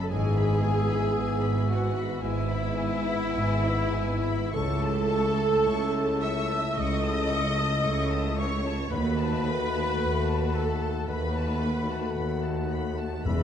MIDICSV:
0, 0, Header, 1, 13, 480
1, 0, Start_track
1, 0, Tempo, 1061947
1, 51, Time_signature, 4, 2, 24, 8
1, 1010, Tempo, 1117318
1, 1490, Tempo, 1188119
1, 1970, Tempo, 1113173
1, 2930, Tempo, 1083032
1, 5883, End_track
2, 0, Start_track
2, 0, Title_t, "Violin section"
2, 0, Program_c, 0, 48
2, 0, Note_on_c, 0, 83, 63
2, 49, Note_off_c, 0, 83, 0
2, 50, Note_on_c, 0, 80, 74
2, 163, Note_off_c, 0, 80, 0
2, 171, Note_on_c, 0, 83, 62
2, 287, Note_on_c, 0, 80, 70
2, 291, Note_off_c, 0, 83, 0
2, 408, Note_off_c, 0, 80, 0
2, 410, Note_on_c, 0, 83, 65
2, 527, Note_on_c, 0, 80, 79
2, 529, Note_off_c, 0, 83, 0
2, 639, Note_off_c, 0, 80, 0
2, 643, Note_on_c, 0, 83, 67
2, 764, Note_on_c, 0, 80, 62
2, 765, Note_off_c, 0, 83, 0
2, 884, Note_on_c, 0, 83, 58
2, 887, Note_off_c, 0, 80, 0
2, 1005, Note_on_c, 0, 80, 73
2, 1008, Note_off_c, 0, 83, 0
2, 1117, Note_off_c, 0, 80, 0
2, 1123, Note_on_c, 0, 83, 67
2, 1242, Note_on_c, 0, 80, 64
2, 1246, Note_off_c, 0, 83, 0
2, 1364, Note_on_c, 0, 83, 70
2, 1366, Note_off_c, 0, 80, 0
2, 1480, Note_on_c, 0, 80, 78
2, 1489, Note_off_c, 0, 83, 0
2, 1594, Note_off_c, 0, 80, 0
2, 1602, Note_on_c, 0, 83, 67
2, 1726, Note_off_c, 0, 83, 0
2, 1726, Note_on_c, 0, 80, 71
2, 1850, Note_off_c, 0, 80, 0
2, 1850, Note_on_c, 0, 83, 73
2, 1970, Note_off_c, 0, 83, 0
2, 1970, Note_on_c, 0, 85, 75
2, 2086, Note_off_c, 0, 85, 0
2, 2094, Note_on_c, 0, 81, 66
2, 2213, Note_on_c, 0, 85, 66
2, 2215, Note_off_c, 0, 81, 0
2, 2334, Note_off_c, 0, 85, 0
2, 2334, Note_on_c, 0, 81, 69
2, 2453, Note_on_c, 0, 85, 74
2, 2455, Note_off_c, 0, 81, 0
2, 2566, Note_off_c, 0, 85, 0
2, 2577, Note_on_c, 0, 81, 65
2, 2694, Note_on_c, 0, 85, 67
2, 2696, Note_off_c, 0, 81, 0
2, 2813, Note_off_c, 0, 85, 0
2, 2815, Note_on_c, 0, 81, 57
2, 2931, Note_on_c, 0, 85, 72
2, 2932, Note_off_c, 0, 81, 0
2, 3043, Note_off_c, 0, 85, 0
2, 3049, Note_on_c, 0, 81, 64
2, 3166, Note_on_c, 0, 85, 60
2, 3170, Note_off_c, 0, 81, 0
2, 3288, Note_off_c, 0, 85, 0
2, 3291, Note_on_c, 0, 81, 66
2, 3407, Note_on_c, 0, 85, 76
2, 3410, Note_off_c, 0, 81, 0
2, 3519, Note_off_c, 0, 85, 0
2, 3526, Note_on_c, 0, 81, 69
2, 3643, Note_on_c, 0, 85, 65
2, 3646, Note_off_c, 0, 81, 0
2, 3764, Note_off_c, 0, 85, 0
2, 3770, Note_on_c, 0, 81, 62
2, 3885, Note_on_c, 0, 83, 77
2, 3886, Note_off_c, 0, 81, 0
2, 3995, Note_off_c, 0, 83, 0
2, 4003, Note_on_c, 0, 81, 63
2, 4122, Note_off_c, 0, 81, 0
2, 4131, Note_on_c, 0, 83, 65
2, 4245, Note_on_c, 0, 81, 61
2, 4247, Note_off_c, 0, 83, 0
2, 4365, Note_off_c, 0, 81, 0
2, 4365, Note_on_c, 0, 83, 70
2, 4477, Note_off_c, 0, 83, 0
2, 4482, Note_on_c, 0, 81, 61
2, 4603, Note_off_c, 0, 81, 0
2, 4607, Note_on_c, 0, 83, 55
2, 4724, Note_off_c, 0, 83, 0
2, 4729, Note_on_c, 0, 81, 63
2, 4844, Note_off_c, 0, 81, 0
2, 4850, Note_on_c, 0, 83, 68
2, 4956, Note_off_c, 0, 83, 0
2, 4966, Note_on_c, 0, 81, 64
2, 5081, Note_off_c, 0, 81, 0
2, 5088, Note_on_c, 0, 83, 56
2, 5201, Note_on_c, 0, 81, 57
2, 5203, Note_off_c, 0, 83, 0
2, 5320, Note_off_c, 0, 81, 0
2, 5321, Note_on_c, 0, 83, 65
2, 5433, Note_off_c, 0, 83, 0
2, 5445, Note_on_c, 0, 81, 59
2, 5564, Note_off_c, 0, 81, 0
2, 5568, Note_on_c, 0, 83, 63
2, 5687, Note_off_c, 0, 83, 0
2, 5687, Note_on_c, 0, 81, 68
2, 5808, Note_off_c, 0, 81, 0
2, 5808, Note_on_c, 0, 83, 74
2, 5883, Note_off_c, 0, 83, 0
2, 5883, End_track
3, 0, Start_track
3, 0, Title_t, "Flute"
3, 0, Program_c, 1, 73
3, 0, Note_on_c, 1, 81, 103
3, 50, Note_on_c, 1, 80, 100
3, 57, Note_off_c, 1, 81, 0
3, 630, Note_off_c, 1, 80, 0
3, 768, Note_on_c, 1, 78, 91
3, 922, Note_off_c, 1, 78, 0
3, 1007, Note_on_c, 1, 76, 103
3, 1972, Note_on_c, 1, 81, 106
3, 1978, Note_off_c, 1, 76, 0
3, 2594, Note_off_c, 1, 81, 0
3, 2692, Note_on_c, 1, 88, 105
3, 2930, Note_on_c, 1, 87, 105
3, 2937, Note_off_c, 1, 88, 0
3, 3648, Note_on_c, 1, 85, 97
3, 3655, Note_off_c, 1, 87, 0
3, 3802, Note_off_c, 1, 85, 0
3, 3886, Note_on_c, 1, 83, 102
3, 4601, Note_on_c, 1, 81, 90
3, 4608, Note_off_c, 1, 83, 0
3, 4841, Note_on_c, 1, 83, 83
3, 4848, Note_off_c, 1, 81, 0
3, 5562, Note_off_c, 1, 83, 0
3, 5808, Note_on_c, 1, 71, 78
3, 5883, Note_off_c, 1, 71, 0
3, 5883, End_track
4, 0, Start_track
4, 0, Title_t, "Violin section"
4, 0, Program_c, 2, 48
4, 0, Note_on_c, 2, 81, 90
4, 50, Note_on_c, 2, 80, 87
4, 51, Note_off_c, 2, 81, 0
4, 764, Note_on_c, 2, 78, 81
4, 767, Note_off_c, 2, 80, 0
4, 1004, Note_off_c, 2, 78, 0
4, 1006, Note_on_c, 2, 76, 87
4, 1969, Note_off_c, 2, 76, 0
4, 1970, Note_on_c, 2, 81, 102
4, 2680, Note_off_c, 2, 81, 0
4, 2693, Note_on_c, 2, 88, 99
4, 2930, Note_off_c, 2, 88, 0
4, 2933, Note_on_c, 2, 87, 101
4, 3648, Note_on_c, 2, 85, 101
4, 3649, Note_off_c, 2, 87, 0
4, 3879, Note_off_c, 2, 85, 0
4, 3881, Note_on_c, 2, 83, 102
4, 4603, Note_off_c, 2, 83, 0
4, 4603, Note_on_c, 2, 81, 80
4, 4834, Note_on_c, 2, 83, 83
4, 4841, Note_off_c, 2, 81, 0
4, 5558, Note_off_c, 2, 83, 0
4, 5805, Note_on_c, 2, 71, 81
4, 5883, Note_off_c, 2, 71, 0
4, 5883, End_track
5, 0, Start_track
5, 0, Title_t, "Oboe"
5, 0, Program_c, 3, 68
5, 51, Note_on_c, 3, 76, 87
5, 993, Note_off_c, 3, 76, 0
5, 1004, Note_on_c, 3, 76, 85
5, 1952, Note_off_c, 3, 76, 0
5, 1971, Note_on_c, 3, 76, 89
5, 3749, Note_off_c, 3, 76, 0
5, 3883, Note_on_c, 3, 78, 84
5, 4823, Note_off_c, 3, 78, 0
5, 4843, Note_on_c, 3, 78, 85
5, 5809, Note_on_c, 3, 76, 76
5, 5816, Note_off_c, 3, 78, 0
5, 5883, Note_off_c, 3, 76, 0
5, 5883, End_track
6, 0, Start_track
6, 0, Title_t, "Clarinet"
6, 0, Program_c, 4, 71
6, 45, Note_on_c, 4, 68, 104
6, 763, Note_on_c, 4, 66, 82
6, 770, Note_off_c, 4, 68, 0
6, 922, Note_off_c, 4, 66, 0
6, 1011, Note_on_c, 4, 64, 98
6, 1955, Note_off_c, 4, 64, 0
6, 1972, Note_on_c, 4, 69, 110
6, 2699, Note_on_c, 4, 76, 85
6, 2705, Note_off_c, 4, 69, 0
6, 2937, Note_on_c, 4, 75, 106
6, 2944, Note_off_c, 4, 76, 0
6, 3650, Note_on_c, 4, 73, 90
6, 3657, Note_off_c, 4, 75, 0
6, 3803, Note_off_c, 4, 73, 0
6, 3884, Note_on_c, 4, 71, 110
6, 4606, Note_on_c, 4, 69, 80
6, 4613, Note_off_c, 4, 71, 0
6, 4846, Note_on_c, 4, 71, 92
6, 4853, Note_off_c, 4, 69, 0
6, 5564, Note_off_c, 4, 71, 0
6, 5806, Note_on_c, 4, 59, 80
6, 5883, Note_off_c, 4, 59, 0
6, 5883, End_track
7, 0, Start_track
7, 0, Title_t, "Viola section"
7, 0, Program_c, 5, 48
7, 0, Note_on_c, 5, 69, 113
7, 48, Note_on_c, 5, 68, 127
7, 51, Note_off_c, 5, 69, 0
7, 752, Note_off_c, 5, 68, 0
7, 769, Note_on_c, 5, 66, 108
7, 1011, Note_off_c, 5, 66, 0
7, 1014, Note_on_c, 5, 64, 127
7, 1971, Note_on_c, 5, 69, 127
7, 1973, Note_off_c, 5, 64, 0
7, 2693, Note_on_c, 5, 76, 110
7, 2695, Note_off_c, 5, 69, 0
7, 2925, Note_off_c, 5, 76, 0
7, 2931, Note_on_c, 5, 75, 127
7, 3647, Note_on_c, 5, 73, 105
7, 3648, Note_off_c, 5, 75, 0
7, 3878, Note_off_c, 5, 73, 0
7, 3883, Note_on_c, 5, 71, 121
7, 4604, Note_off_c, 5, 71, 0
7, 4607, Note_on_c, 5, 69, 100
7, 4843, Note_off_c, 5, 69, 0
7, 4844, Note_on_c, 5, 71, 104
7, 5564, Note_off_c, 5, 71, 0
7, 5806, Note_on_c, 5, 59, 98
7, 5883, Note_off_c, 5, 59, 0
7, 5883, End_track
8, 0, Start_track
8, 0, Title_t, "French horn section"
8, 0, Program_c, 6, 60
8, 48, Note_on_c, 6, 59, 101
8, 48, Note_on_c, 6, 64, 92
8, 991, Note_off_c, 6, 59, 0
8, 991, Note_off_c, 6, 64, 0
8, 1004, Note_on_c, 6, 59, 82
8, 1005, Note_on_c, 6, 64, 91
8, 1952, Note_off_c, 6, 59, 0
8, 1952, Note_off_c, 6, 64, 0
8, 1967, Note_on_c, 6, 57, 91
8, 1970, Note_on_c, 6, 64, 96
8, 3801, Note_off_c, 6, 57, 0
8, 3801, Note_off_c, 6, 64, 0
8, 3876, Note_on_c, 6, 66, 89
8, 3877, Note_on_c, 6, 57, 94
8, 4820, Note_off_c, 6, 57, 0
8, 4820, Note_off_c, 6, 66, 0
8, 4833, Note_on_c, 6, 66, 80
8, 4837, Note_on_c, 6, 57, 86
8, 5785, Note_off_c, 6, 66, 0
8, 5787, Note_off_c, 6, 57, 0
8, 5802, Note_on_c, 6, 64, 86
8, 5805, Note_on_c, 6, 56, 88
8, 5883, Note_off_c, 6, 56, 0
8, 5883, Note_off_c, 6, 64, 0
8, 5883, End_track
9, 0, Start_track
9, 0, Title_t, "Harp"
9, 0, Program_c, 7, 46
9, 0, Note_on_c, 7, 42, 80
9, 0, Note_on_c, 7, 57, 58
9, 0, Note_on_c, 7, 59, 58
9, 0, Note_on_c, 7, 75, 66
9, 0, Note_on_c, 7, 78, 68
9, 54, Note_on_c, 7, 44, 81
9, 59, Note_off_c, 7, 57, 0
9, 73, Note_off_c, 7, 42, 0
9, 73, Note_off_c, 7, 75, 0
9, 73, Note_off_c, 7, 78, 0
9, 289, Note_off_c, 7, 59, 0
9, 295, Note_on_c, 7, 59, 66
9, 529, Note_on_c, 7, 76, 65
9, 768, Note_on_c, 7, 71, 71
9, 1007, Note_off_c, 7, 44, 0
9, 1013, Note_on_c, 7, 44, 68
9, 1245, Note_off_c, 7, 59, 0
9, 1251, Note_on_c, 7, 59, 65
9, 1487, Note_off_c, 7, 76, 0
9, 1492, Note_on_c, 7, 76, 74
9, 1725, Note_off_c, 7, 71, 0
9, 1730, Note_on_c, 7, 71, 67
9, 1970, Note_on_c, 7, 49, 86
9, 1991, Note_off_c, 7, 71, 0
9, 1992, Note_off_c, 7, 44, 0
9, 1992, Note_off_c, 7, 59, 0
9, 2214, Note_on_c, 7, 57, 62
9, 2452, Note_on_c, 7, 73, 69
9, 2687, Note_off_c, 7, 76, 0
9, 2692, Note_on_c, 7, 76, 70
9, 2925, Note_off_c, 7, 49, 0
9, 2930, Note_on_c, 7, 49, 68
9, 3163, Note_off_c, 7, 57, 0
9, 3168, Note_on_c, 7, 57, 63
9, 3404, Note_off_c, 7, 73, 0
9, 3409, Note_on_c, 7, 73, 72
9, 3642, Note_off_c, 7, 76, 0
9, 3648, Note_on_c, 7, 76, 70
9, 3884, Note_on_c, 7, 51, 77
9, 3902, Note_off_c, 7, 49, 0
9, 3902, Note_off_c, 7, 73, 0
9, 3903, Note_off_c, 7, 76, 0
9, 4117, Note_off_c, 7, 57, 0
9, 4123, Note_on_c, 7, 57, 64
9, 4367, Note_on_c, 7, 71, 57
9, 4605, Note_on_c, 7, 78, 65
9, 4836, Note_off_c, 7, 51, 0
9, 4841, Note_on_c, 7, 51, 64
9, 5073, Note_off_c, 7, 57, 0
9, 5079, Note_on_c, 7, 57, 63
9, 5316, Note_off_c, 7, 71, 0
9, 5321, Note_on_c, 7, 71, 71
9, 5557, Note_off_c, 7, 78, 0
9, 5562, Note_on_c, 7, 78, 62
9, 5807, Note_on_c, 7, 52, 72
9, 5826, Note_off_c, 7, 51, 0
9, 5826, Note_off_c, 7, 57, 0
9, 5826, Note_off_c, 7, 78, 0
9, 5883, Note_off_c, 7, 52, 0
9, 5883, Note_off_c, 7, 71, 0
9, 5883, End_track
10, 0, Start_track
10, 0, Title_t, "Bassoon"
10, 0, Program_c, 8, 70
10, 55, Note_on_c, 8, 59, 86
10, 994, Note_off_c, 8, 59, 0
10, 1007, Note_on_c, 8, 59, 84
10, 1953, Note_off_c, 8, 59, 0
10, 1969, Note_on_c, 8, 57, 89
10, 3748, Note_off_c, 8, 57, 0
10, 3881, Note_on_c, 8, 57, 89
10, 4822, Note_off_c, 8, 57, 0
10, 4842, Note_on_c, 8, 57, 78
10, 5789, Note_off_c, 8, 57, 0
10, 5811, Note_on_c, 8, 56, 80
10, 5883, Note_off_c, 8, 56, 0
10, 5883, End_track
11, 0, Start_track
11, 0, Title_t, "Timpani"
11, 0, Program_c, 10, 47
11, 5804, Note_on_c, 10, 40, 90
11, 5883, Note_off_c, 10, 40, 0
11, 5883, End_track
12, 0, Start_track
12, 0, Title_t, "Cello section"
12, 0, Program_c, 11, 48
12, 49, Note_on_c, 11, 44, 97
12, 473, Note_off_c, 11, 44, 0
12, 528, Note_on_c, 11, 44, 86
12, 952, Note_off_c, 11, 44, 0
12, 1009, Note_on_c, 11, 44, 89
12, 1433, Note_off_c, 11, 44, 0
12, 1490, Note_on_c, 11, 44, 92
12, 1915, Note_off_c, 11, 44, 0
12, 1973, Note_on_c, 11, 37, 94
12, 2400, Note_off_c, 11, 37, 0
12, 2455, Note_on_c, 11, 37, 87
12, 2875, Note_off_c, 11, 37, 0
12, 2934, Note_on_c, 11, 37, 87
12, 3355, Note_off_c, 11, 37, 0
12, 3412, Note_on_c, 11, 37, 94
12, 3829, Note_off_c, 11, 37, 0
12, 3881, Note_on_c, 11, 39, 91
12, 4305, Note_off_c, 11, 39, 0
12, 4363, Note_on_c, 11, 39, 77
12, 4785, Note_off_c, 11, 39, 0
12, 4838, Note_on_c, 11, 39, 77
12, 5260, Note_off_c, 11, 39, 0
12, 5319, Note_on_c, 11, 39, 77
12, 5749, Note_off_c, 11, 39, 0
12, 5805, Note_on_c, 11, 40, 88
12, 5883, Note_off_c, 11, 40, 0
12, 5883, End_track
13, 0, Start_track
13, 0, Title_t, "Double bass section"
13, 0, Program_c, 12, 48
13, 51, Note_on_c, 12, 32, 103
13, 474, Note_off_c, 12, 32, 0
13, 529, Note_on_c, 12, 32, 87
13, 953, Note_off_c, 12, 32, 0
13, 1009, Note_on_c, 12, 32, 92
13, 1433, Note_off_c, 12, 32, 0
13, 1489, Note_on_c, 12, 32, 94
13, 1914, Note_off_c, 12, 32, 0
13, 1972, Note_on_c, 12, 37, 101
13, 2399, Note_off_c, 12, 37, 0
13, 2457, Note_on_c, 12, 37, 83
13, 2876, Note_off_c, 12, 37, 0
13, 2929, Note_on_c, 12, 37, 82
13, 3353, Note_off_c, 12, 37, 0
13, 3408, Note_on_c, 12, 37, 75
13, 3827, Note_off_c, 12, 37, 0
13, 3882, Note_on_c, 12, 39, 95
13, 4305, Note_off_c, 12, 39, 0
13, 4363, Note_on_c, 12, 39, 80
13, 4786, Note_off_c, 12, 39, 0
13, 4840, Note_on_c, 12, 39, 89
13, 5261, Note_off_c, 12, 39, 0
13, 5316, Note_on_c, 12, 39, 88
13, 5748, Note_off_c, 12, 39, 0
13, 5807, Note_on_c, 12, 28, 94
13, 5883, Note_off_c, 12, 28, 0
13, 5883, End_track
0, 0, End_of_file